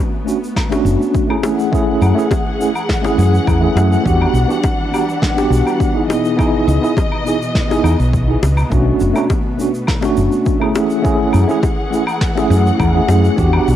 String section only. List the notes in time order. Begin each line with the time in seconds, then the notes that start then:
Already playing: A3 B3
1.43 E3 G#4 F#5
4.06 G3 D4
6.10 B2 B3 D#5
8.72 A3
10.75 E3 G#4 F#5
13.38 G3 D4